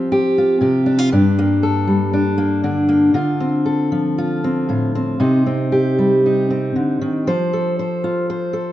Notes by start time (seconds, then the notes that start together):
Already playing: F3 C4 F4 G4
0.12 G4
0.38 F4
0.61 C3 G4
0.86 D4
0.99 F4
1.12 G2 D4
1.39 A#3
1.63 A4
1.88 G3
2.13 D4
2.38 A#3
2.64 D3 D4
2.89 A#3
3.14 D3 F4
3.40 C4
3.66 A4
3.92 F3
4.18 F4
4.44 C4
4.69 A2 F4
4.95 C4
5.20 C3 D#4
5.46 C4
5.72 G4
5.99 G3
6.26 D#4
6.50 C4
6.76 D3
7.01 D#3
7.27 F3 C5
7.53 A4
7.79 C5
8.04 F4
8.30 C5
8.53 A4